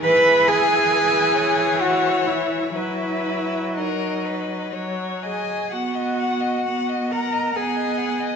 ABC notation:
X:1
M:3/4
L:1/16
Q:1/4=64
K:B
V:1 name="Violin"
b2 g6 f2 e2 | e4 d4 z2 g2 | f6 a2 g4 |]
V:2 name="Violin"
G4 B2 c6 | B4 A2 B2 c2 d2 | f d f d f d f d f d f d |]
V:3 name="Cello"
B2 G6 F2 E2 | E4 D4 z2 G2 | F6 A2 G4 |]
V:4 name="Viola" clef=bass
E,12 | F,8 F,4 | B,4 B,4 B,4 |]